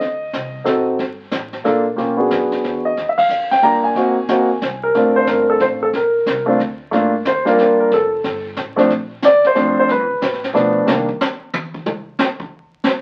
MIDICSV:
0, 0, Header, 1, 5, 480
1, 0, Start_track
1, 0, Time_signature, 3, 2, 24, 8
1, 0, Key_signature, -2, "major"
1, 0, Tempo, 329308
1, 10092, Key_signature, -2, "minor"
1, 18971, End_track
2, 0, Start_track
2, 0, Title_t, "Grand piano"
2, 0, Program_c, 0, 0
2, 0, Note_on_c, 0, 75, 91
2, 937, Note_on_c, 0, 60, 49
2, 941, Note_on_c, 0, 63, 46
2, 953, Note_on_c, 0, 69, 59
2, 956, Note_on_c, 0, 66, 44
2, 1209, Note_off_c, 0, 75, 0
2, 1430, Note_off_c, 0, 60, 0
2, 1432, Note_off_c, 0, 63, 0
2, 1438, Note_off_c, 0, 69, 0
2, 1439, Note_off_c, 0, 66, 0
2, 2391, Note_on_c, 0, 58, 59
2, 2398, Note_on_c, 0, 62, 54
2, 2405, Note_on_c, 0, 65, 53
2, 2406, Note_on_c, 0, 69, 61
2, 2675, Note_off_c, 0, 58, 0
2, 2679, Note_off_c, 0, 62, 0
2, 2682, Note_off_c, 0, 65, 0
2, 2683, Note_off_c, 0, 69, 0
2, 2858, Note_on_c, 0, 58, 49
2, 2864, Note_on_c, 0, 61, 44
2, 2868, Note_on_c, 0, 65, 45
2, 2874, Note_on_c, 0, 67, 54
2, 3149, Note_off_c, 0, 58, 0
2, 3152, Note_off_c, 0, 61, 0
2, 3154, Note_off_c, 0, 65, 0
2, 3157, Note_off_c, 0, 67, 0
2, 3162, Note_on_c, 0, 59, 50
2, 3172, Note_on_c, 0, 62, 44
2, 3179, Note_on_c, 0, 66, 46
2, 3186, Note_on_c, 0, 68, 55
2, 4158, Note_on_c, 0, 75, 76
2, 4207, Note_off_c, 0, 59, 0
2, 4212, Note_off_c, 0, 62, 0
2, 4216, Note_off_c, 0, 66, 0
2, 4219, Note_off_c, 0, 68, 0
2, 4505, Note_on_c, 0, 76, 63
2, 4515, Note_off_c, 0, 75, 0
2, 4631, Note_on_c, 0, 77, 87
2, 4635, Note_off_c, 0, 76, 0
2, 5122, Note_on_c, 0, 79, 86
2, 5127, Note_off_c, 0, 77, 0
2, 5279, Note_on_c, 0, 58, 58
2, 5291, Note_on_c, 0, 62, 48
2, 5295, Note_off_c, 0, 79, 0
2, 5297, Note_on_c, 0, 82, 92
2, 5300, Note_on_c, 0, 65, 46
2, 5300, Note_on_c, 0, 67, 62
2, 5579, Note_off_c, 0, 82, 0
2, 5598, Note_on_c, 0, 80, 79
2, 5739, Note_off_c, 0, 58, 0
2, 5761, Note_on_c, 0, 58, 57
2, 5769, Note_off_c, 0, 62, 0
2, 5769, Note_on_c, 0, 63, 53
2, 5773, Note_off_c, 0, 67, 0
2, 5773, Note_on_c, 0, 60, 50
2, 5774, Note_off_c, 0, 65, 0
2, 5785, Note_on_c, 0, 66, 65
2, 6042, Note_off_c, 0, 58, 0
2, 6046, Note_off_c, 0, 63, 0
2, 6048, Note_off_c, 0, 60, 0
2, 6054, Note_off_c, 0, 66, 0
2, 6243, Note_on_c, 0, 58, 59
2, 6245, Note_on_c, 0, 60, 47
2, 6251, Note_on_c, 0, 63, 53
2, 6259, Note_on_c, 0, 66, 64
2, 6523, Note_off_c, 0, 58, 0
2, 6524, Note_off_c, 0, 60, 0
2, 6527, Note_off_c, 0, 63, 0
2, 6531, Note_off_c, 0, 66, 0
2, 7046, Note_on_c, 0, 70, 76
2, 7081, Note_off_c, 0, 80, 0
2, 7211, Note_on_c, 0, 57, 51
2, 7216, Note_on_c, 0, 60, 48
2, 7230, Note_on_c, 0, 62, 45
2, 7232, Note_on_c, 0, 65, 55
2, 7489, Note_off_c, 0, 70, 0
2, 7523, Note_on_c, 0, 72, 79
2, 7680, Note_off_c, 0, 72, 0
2, 7702, Note_on_c, 0, 70, 73
2, 7983, Note_off_c, 0, 70, 0
2, 8011, Note_on_c, 0, 69, 71
2, 8165, Note_off_c, 0, 69, 0
2, 8180, Note_on_c, 0, 72, 74
2, 8253, Note_off_c, 0, 72, 0
2, 8492, Note_on_c, 0, 69, 70
2, 8549, Note_off_c, 0, 57, 0
2, 8551, Note_off_c, 0, 60, 0
2, 8558, Note_off_c, 0, 62, 0
2, 8559, Note_off_c, 0, 65, 0
2, 8565, Note_off_c, 0, 69, 0
2, 8684, Note_on_c, 0, 70, 74
2, 9414, Note_on_c, 0, 57, 62
2, 9427, Note_on_c, 0, 60, 59
2, 9434, Note_on_c, 0, 62, 57
2, 9438, Note_on_c, 0, 65, 67
2, 9571, Note_off_c, 0, 70, 0
2, 9582, Note_off_c, 0, 57, 0
2, 9589, Note_off_c, 0, 60, 0
2, 9592, Note_off_c, 0, 62, 0
2, 9594, Note_off_c, 0, 65, 0
2, 10076, Note_on_c, 0, 57, 69
2, 10085, Note_on_c, 0, 58, 57
2, 10099, Note_on_c, 0, 62, 64
2, 10099, Note_on_c, 0, 65, 69
2, 10362, Note_off_c, 0, 57, 0
2, 10367, Note_off_c, 0, 58, 0
2, 10374, Note_off_c, 0, 62, 0
2, 10374, Note_off_c, 0, 65, 0
2, 10603, Note_on_c, 0, 72, 69
2, 10861, Note_on_c, 0, 55, 72
2, 10862, Note_on_c, 0, 58, 69
2, 10871, Note_on_c, 0, 62, 64
2, 10878, Note_on_c, 0, 65, 79
2, 10888, Note_off_c, 0, 72, 0
2, 10912, Note_on_c, 0, 70, 70
2, 11345, Note_off_c, 0, 70, 0
2, 11376, Note_on_c, 0, 70, 70
2, 11490, Note_off_c, 0, 55, 0
2, 11490, Note_off_c, 0, 58, 0
2, 11495, Note_off_c, 0, 62, 0
2, 11498, Note_off_c, 0, 65, 0
2, 11536, Note_off_c, 0, 70, 0
2, 11570, Note_on_c, 0, 69, 74
2, 12287, Note_off_c, 0, 69, 0
2, 12772, Note_on_c, 0, 53, 67
2, 12775, Note_on_c, 0, 57, 64
2, 12790, Note_on_c, 0, 60, 64
2, 12797, Note_on_c, 0, 62, 82
2, 12942, Note_off_c, 0, 53, 0
2, 12944, Note_off_c, 0, 57, 0
2, 12952, Note_off_c, 0, 60, 0
2, 12955, Note_off_c, 0, 62, 0
2, 13483, Note_on_c, 0, 74, 104
2, 13769, Note_off_c, 0, 74, 0
2, 13799, Note_on_c, 0, 72, 82
2, 13918, Note_on_c, 0, 53, 61
2, 13924, Note_on_c, 0, 57, 53
2, 13933, Note_on_c, 0, 60, 58
2, 13941, Note_on_c, 0, 62, 72
2, 14229, Note_off_c, 0, 72, 0
2, 14277, Note_on_c, 0, 72, 80
2, 14407, Note_off_c, 0, 53, 0
2, 14410, Note_off_c, 0, 57, 0
2, 14414, Note_off_c, 0, 60, 0
2, 14418, Note_off_c, 0, 62, 0
2, 14427, Note_off_c, 0, 72, 0
2, 14450, Note_on_c, 0, 71, 77
2, 15166, Note_off_c, 0, 71, 0
2, 15354, Note_on_c, 0, 53, 68
2, 15364, Note_on_c, 0, 57, 56
2, 15368, Note_on_c, 0, 59, 63
2, 15373, Note_on_c, 0, 62, 75
2, 15829, Note_off_c, 0, 62, 0
2, 15835, Note_on_c, 0, 51, 58
2, 15837, Note_on_c, 0, 55, 53
2, 15842, Note_on_c, 0, 58, 53
2, 15844, Note_off_c, 0, 53, 0
2, 15849, Note_off_c, 0, 57, 0
2, 15851, Note_off_c, 0, 59, 0
2, 15851, Note_on_c, 0, 62, 64
2, 16121, Note_off_c, 0, 51, 0
2, 16122, Note_off_c, 0, 55, 0
2, 16125, Note_off_c, 0, 58, 0
2, 16130, Note_off_c, 0, 62, 0
2, 18971, End_track
3, 0, Start_track
3, 0, Title_t, "Upright bass"
3, 0, Program_c, 1, 32
3, 4, Note_on_c, 1, 38, 65
3, 469, Note_off_c, 1, 38, 0
3, 484, Note_on_c, 1, 36, 84
3, 949, Note_off_c, 1, 36, 0
3, 959, Note_on_c, 1, 33, 79
3, 1427, Note_off_c, 1, 33, 0
3, 1441, Note_on_c, 1, 31, 64
3, 1908, Note_off_c, 1, 31, 0
3, 1917, Note_on_c, 1, 33, 80
3, 2386, Note_off_c, 1, 33, 0
3, 2400, Note_on_c, 1, 34, 78
3, 2868, Note_off_c, 1, 34, 0
3, 2887, Note_on_c, 1, 35, 66
3, 3352, Note_off_c, 1, 35, 0
3, 3361, Note_on_c, 1, 42, 77
3, 3829, Note_off_c, 1, 42, 0
3, 3849, Note_on_c, 1, 40, 76
3, 4313, Note_off_c, 1, 40, 0
3, 4327, Note_on_c, 1, 39, 60
3, 4792, Note_off_c, 1, 39, 0
3, 4800, Note_on_c, 1, 41, 83
3, 5269, Note_off_c, 1, 41, 0
3, 5289, Note_on_c, 1, 43, 70
3, 5754, Note_off_c, 1, 43, 0
3, 5765, Note_on_c, 1, 44, 67
3, 6232, Note_off_c, 1, 44, 0
3, 6250, Note_on_c, 1, 39, 86
3, 6715, Note_off_c, 1, 39, 0
3, 6732, Note_on_c, 1, 36, 81
3, 7196, Note_off_c, 1, 36, 0
3, 7208, Note_on_c, 1, 34, 75
3, 7675, Note_off_c, 1, 34, 0
3, 7685, Note_on_c, 1, 31, 83
3, 8153, Note_off_c, 1, 31, 0
3, 8169, Note_on_c, 1, 33, 83
3, 8636, Note_off_c, 1, 33, 0
3, 8648, Note_on_c, 1, 34, 66
3, 9116, Note_off_c, 1, 34, 0
3, 9127, Note_on_c, 1, 36, 82
3, 9596, Note_off_c, 1, 36, 0
3, 9608, Note_on_c, 1, 38, 81
3, 10077, Note_off_c, 1, 38, 0
3, 10087, Note_on_c, 1, 43, 73
3, 10556, Note_off_c, 1, 43, 0
3, 10572, Note_on_c, 1, 39, 89
3, 11039, Note_off_c, 1, 39, 0
3, 11051, Note_on_c, 1, 41, 78
3, 11519, Note_off_c, 1, 41, 0
3, 11535, Note_on_c, 1, 29, 69
3, 12001, Note_off_c, 1, 29, 0
3, 12013, Note_on_c, 1, 31, 89
3, 12480, Note_off_c, 1, 31, 0
3, 12492, Note_on_c, 1, 33, 84
3, 12960, Note_off_c, 1, 33, 0
3, 12971, Note_on_c, 1, 34, 70
3, 13439, Note_off_c, 1, 34, 0
3, 13445, Note_on_c, 1, 38, 85
3, 13737, Note_off_c, 1, 38, 0
3, 13927, Note_on_c, 1, 41, 85
3, 14218, Note_off_c, 1, 41, 0
3, 14412, Note_on_c, 1, 43, 75
3, 14567, Note_off_c, 1, 43, 0
3, 14567, Note_on_c, 1, 41, 54
3, 14716, Note_off_c, 1, 41, 0
3, 14725, Note_on_c, 1, 38, 61
3, 14878, Note_off_c, 1, 38, 0
3, 14890, Note_on_c, 1, 45, 89
3, 15358, Note_off_c, 1, 45, 0
3, 15376, Note_on_c, 1, 47, 84
3, 15833, Note_off_c, 1, 47, 0
3, 15842, Note_on_c, 1, 48, 74
3, 16146, Note_off_c, 1, 48, 0
3, 18971, End_track
4, 0, Start_track
4, 0, Title_t, "Muted upright bass strokes"
4, 13755, Note_on_c, 9, 29, 39
4, 13900, Note_off_c, 9, 29, 0
4, 14243, Note_on_c, 9, 29, 42
4, 14388, Note_off_c, 9, 29, 0
4, 18971, End_track
5, 0, Start_track
5, 0, Title_t, "Drums"
5, 4, Note_on_c, 9, 36, 15
5, 11, Note_on_c, 9, 25, 41
5, 11, Note_on_c, 9, 38, 34
5, 149, Note_off_c, 9, 36, 0
5, 157, Note_off_c, 9, 38, 0
5, 482, Note_on_c, 9, 36, 21
5, 484, Note_on_c, 9, 44, 50
5, 487, Note_on_c, 9, 38, 53
5, 628, Note_off_c, 9, 36, 0
5, 630, Note_off_c, 9, 44, 0
5, 633, Note_off_c, 9, 38, 0
5, 957, Note_on_c, 9, 44, 55
5, 960, Note_on_c, 9, 38, 49
5, 961, Note_on_c, 9, 36, 18
5, 1103, Note_off_c, 9, 44, 0
5, 1106, Note_off_c, 9, 38, 0
5, 1107, Note_off_c, 9, 36, 0
5, 1441, Note_off_c, 9, 25, 0
5, 1441, Note_on_c, 9, 25, 46
5, 1441, Note_on_c, 9, 36, 15
5, 1441, Note_on_c, 9, 38, 34
5, 1586, Note_off_c, 9, 38, 0
5, 1587, Note_off_c, 9, 36, 0
5, 1913, Note_on_c, 9, 44, 55
5, 1915, Note_on_c, 9, 38, 57
5, 1920, Note_on_c, 9, 36, 23
5, 2058, Note_off_c, 9, 44, 0
5, 2061, Note_off_c, 9, 38, 0
5, 2066, Note_off_c, 9, 36, 0
5, 2226, Note_on_c, 9, 38, 34
5, 2371, Note_off_c, 9, 38, 0
5, 2403, Note_on_c, 9, 36, 19
5, 2405, Note_on_c, 9, 38, 35
5, 2548, Note_off_c, 9, 36, 0
5, 2551, Note_off_c, 9, 38, 0
5, 2883, Note_on_c, 9, 36, 23
5, 2887, Note_off_c, 9, 25, 0
5, 2887, Note_on_c, 9, 25, 37
5, 2887, Note_on_c, 9, 38, 34
5, 3029, Note_off_c, 9, 36, 0
5, 3033, Note_off_c, 9, 38, 0
5, 3361, Note_on_c, 9, 44, 45
5, 3363, Note_on_c, 9, 36, 20
5, 3363, Note_on_c, 9, 38, 54
5, 3506, Note_off_c, 9, 44, 0
5, 3509, Note_off_c, 9, 36, 0
5, 3509, Note_off_c, 9, 38, 0
5, 3669, Note_on_c, 9, 38, 34
5, 3815, Note_off_c, 9, 38, 0
5, 3846, Note_on_c, 9, 36, 22
5, 3849, Note_on_c, 9, 38, 36
5, 3992, Note_off_c, 9, 36, 0
5, 3995, Note_off_c, 9, 38, 0
5, 4327, Note_on_c, 9, 36, 20
5, 4328, Note_off_c, 9, 25, 0
5, 4328, Note_on_c, 9, 25, 40
5, 4328, Note_on_c, 9, 38, 34
5, 4472, Note_off_c, 9, 36, 0
5, 4474, Note_off_c, 9, 38, 0
5, 4636, Note_on_c, 9, 36, 76
5, 4641, Note_on_c, 9, 51, 63
5, 4782, Note_off_c, 9, 36, 0
5, 4787, Note_off_c, 9, 51, 0
5, 4808, Note_on_c, 9, 44, 61
5, 4953, Note_off_c, 9, 44, 0
5, 5117, Note_on_c, 9, 38, 33
5, 5263, Note_off_c, 9, 38, 0
5, 5281, Note_on_c, 9, 38, 35
5, 5285, Note_on_c, 9, 36, 19
5, 5427, Note_off_c, 9, 38, 0
5, 5431, Note_off_c, 9, 36, 0
5, 5765, Note_off_c, 9, 25, 0
5, 5765, Note_on_c, 9, 25, 36
5, 5765, Note_on_c, 9, 38, 35
5, 5766, Note_on_c, 9, 36, 18
5, 5911, Note_off_c, 9, 38, 0
5, 5912, Note_off_c, 9, 36, 0
5, 6243, Note_on_c, 9, 44, 56
5, 6246, Note_on_c, 9, 38, 59
5, 6250, Note_on_c, 9, 36, 24
5, 6389, Note_off_c, 9, 44, 0
5, 6392, Note_off_c, 9, 38, 0
5, 6396, Note_off_c, 9, 36, 0
5, 6727, Note_on_c, 9, 44, 48
5, 6730, Note_on_c, 9, 38, 54
5, 6732, Note_on_c, 9, 36, 17
5, 6873, Note_off_c, 9, 44, 0
5, 6876, Note_off_c, 9, 38, 0
5, 6877, Note_off_c, 9, 36, 0
5, 7210, Note_off_c, 9, 25, 0
5, 7210, Note_on_c, 9, 25, 37
5, 7210, Note_on_c, 9, 38, 33
5, 7212, Note_on_c, 9, 36, 21
5, 7355, Note_off_c, 9, 38, 0
5, 7358, Note_off_c, 9, 36, 0
5, 7679, Note_on_c, 9, 44, 54
5, 7681, Note_on_c, 9, 38, 55
5, 7688, Note_on_c, 9, 36, 23
5, 7824, Note_off_c, 9, 44, 0
5, 7827, Note_off_c, 9, 38, 0
5, 7834, Note_off_c, 9, 36, 0
5, 8160, Note_on_c, 9, 38, 36
5, 8168, Note_on_c, 9, 36, 21
5, 8306, Note_off_c, 9, 38, 0
5, 8313, Note_off_c, 9, 36, 0
5, 8645, Note_off_c, 9, 25, 0
5, 8645, Note_on_c, 9, 25, 40
5, 8645, Note_on_c, 9, 38, 36
5, 8648, Note_on_c, 9, 36, 16
5, 8791, Note_off_c, 9, 38, 0
5, 8794, Note_off_c, 9, 36, 0
5, 9130, Note_on_c, 9, 36, 21
5, 9130, Note_on_c, 9, 44, 54
5, 9133, Note_on_c, 9, 38, 53
5, 9275, Note_off_c, 9, 36, 0
5, 9275, Note_off_c, 9, 44, 0
5, 9278, Note_off_c, 9, 38, 0
5, 9610, Note_on_c, 9, 36, 20
5, 9616, Note_on_c, 9, 38, 37
5, 9755, Note_off_c, 9, 36, 0
5, 9762, Note_off_c, 9, 38, 0
5, 10097, Note_off_c, 9, 25, 0
5, 10097, Note_on_c, 9, 25, 43
5, 10097, Note_on_c, 9, 38, 37
5, 10242, Note_off_c, 9, 38, 0
5, 10568, Note_on_c, 9, 44, 52
5, 10571, Note_on_c, 9, 36, 24
5, 10571, Note_on_c, 9, 38, 64
5, 10714, Note_off_c, 9, 44, 0
5, 10716, Note_off_c, 9, 36, 0
5, 10717, Note_off_c, 9, 38, 0
5, 10880, Note_on_c, 9, 38, 37
5, 11026, Note_off_c, 9, 38, 0
5, 11056, Note_on_c, 9, 38, 39
5, 11202, Note_off_c, 9, 38, 0
5, 11533, Note_on_c, 9, 36, 19
5, 11534, Note_off_c, 9, 25, 0
5, 11534, Note_on_c, 9, 25, 44
5, 11534, Note_on_c, 9, 38, 39
5, 11679, Note_off_c, 9, 36, 0
5, 11679, Note_off_c, 9, 38, 0
5, 12010, Note_on_c, 9, 38, 46
5, 12012, Note_on_c, 9, 36, 24
5, 12156, Note_off_c, 9, 38, 0
5, 12158, Note_off_c, 9, 36, 0
5, 12482, Note_on_c, 9, 44, 53
5, 12485, Note_on_c, 9, 38, 57
5, 12490, Note_on_c, 9, 36, 24
5, 12628, Note_off_c, 9, 44, 0
5, 12631, Note_off_c, 9, 38, 0
5, 12636, Note_off_c, 9, 36, 0
5, 12800, Note_on_c, 9, 38, 41
5, 12946, Note_off_c, 9, 38, 0
5, 12973, Note_on_c, 9, 36, 19
5, 12974, Note_off_c, 9, 25, 0
5, 12974, Note_on_c, 9, 25, 45
5, 12974, Note_on_c, 9, 38, 37
5, 13118, Note_off_c, 9, 36, 0
5, 13119, Note_off_c, 9, 38, 0
5, 13443, Note_on_c, 9, 44, 56
5, 13446, Note_on_c, 9, 38, 70
5, 13450, Note_on_c, 9, 36, 21
5, 13589, Note_off_c, 9, 44, 0
5, 13592, Note_off_c, 9, 38, 0
5, 13595, Note_off_c, 9, 36, 0
5, 13762, Note_on_c, 9, 38, 38
5, 13908, Note_off_c, 9, 38, 0
5, 13922, Note_on_c, 9, 38, 41
5, 14068, Note_off_c, 9, 38, 0
5, 14412, Note_on_c, 9, 36, 19
5, 14413, Note_off_c, 9, 25, 0
5, 14413, Note_on_c, 9, 25, 49
5, 14413, Note_on_c, 9, 38, 41
5, 14558, Note_off_c, 9, 36, 0
5, 14559, Note_off_c, 9, 38, 0
5, 14893, Note_on_c, 9, 44, 52
5, 14895, Note_on_c, 9, 36, 27
5, 14896, Note_on_c, 9, 38, 64
5, 15039, Note_off_c, 9, 44, 0
5, 15040, Note_off_c, 9, 36, 0
5, 15042, Note_off_c, 9, 38, 0
5, 15063, Note_on_c, 9, 38, 29
5, 15208, Note_off_c, 9, 38, 0
5, 15213, Note_on_c, 9, 38, 37
5, 15219, Note_off_c, 9, 38, 0
5, 15219, Note_on_c, 9, 38, 42
5, 15365, Note_off_c, 9, 38, 0
5, 15387, Note_on_c, 9, 38, 41
5, 15533, Note_off_c, 9, 38, 0
5, 15851, Note_on_c, 9, 38, 86
5, 15997, Note_off_c, 9, 38, 0
5, 16162, Note_on_c, 9, 36, 72
5, 16308, Note_off_c, 9, 36, 0
5, 16334, Note_on_c, 9, 44, 62
5, 16337, Note_on_c, 9, 38, 101
5, 16362, Note_off_c, 9, 25, 0
5, 16480, Note_off_c, 9, 44, 0
5, 16483, Note_off_c, 9, 38, 0
5, 16814, Note_on_c, 9, 48, 95
5, 16960, Note_off_c, 9, 48, 0
5, 17117, Note_on_c, 9, 36, 80
5, 17263, Note_off_c, 9, 36, 0
5, 17287, Note_on_c, 9, 47, 82
5, 17432, Note_off_c, 9, 47, 0
5, 17762, Note_on_c, 9, 44, 60
5, 17765, Note_on_c, 9, 38, 101
5, 17908, Note_off_c, 9, 44, 0
5, 17911, Note_off_c, 9, 38, 0
5, 18071, Note_on_c, 9, 36, 82
5, 18217, Note_off_c, 9, 36, 0
5, 18713, Note_on_c, 9, 38, 87
5, 18859, Note_off_c, 9, 38, 0
5, 18971, End_track
0, 0, End_of_file